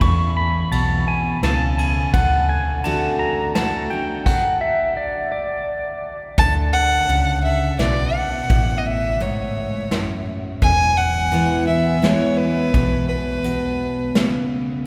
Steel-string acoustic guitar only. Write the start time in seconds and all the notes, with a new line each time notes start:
0.01 E2
0.72 B2
1.43 C#3
2.14 D3
2.84 D3 A3 D4 F#4
3.55 D3 A3 D4 F#4
3.91 D4 F#4
6.38 D3
7.09 C#3
7.79 B2
8.50 A2
9.20 G#2
9.92 F#2
10.62 E2
11.32 E3 G#3 B3 E4
11.67 B3 E4
12.02 E3 G#3 B3 E4
12.74 B2
13.44 B2
14.15 C#3